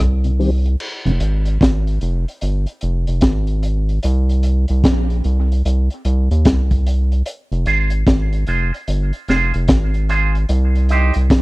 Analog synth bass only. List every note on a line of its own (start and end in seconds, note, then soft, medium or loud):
0.00 0.76 C2 medium
1.06 1.19 F1 loud
1.20 1.58 G#1 medium
1.61 1.99 G#1 loud
2.02 2.26 F1 loud
2.42 2.66 G1 medium
2.83 3.07 F1 loud
3.08 3.22 F1 medium
3.23 3.99 G#1 loud
4.04 4.66 C2 loud
4.70 4.83 C2 medium
4.84 5.22 A#1 medium
5.25 5.62 C2 loud
5.65 5.89 C2 medium
6.05 6.29 C2 loud
6.31 6.45 D#2 medium
6.46 7.22 C2 medium
7.52 7.65 F1 loud
7.66 8.04 G#1 medium
8.07 8.45 G#1 loud
8.48 8.71 F1 loud
8.88 9.12 G1 medium
9.28 9.52 F1 loud
9.55 9.68 F1 medium
9.69 10.45 G#1 loud
10.49 11.11 C2 loud
11.16 11.29 C2 medium
11.30 11.42 A#1 medium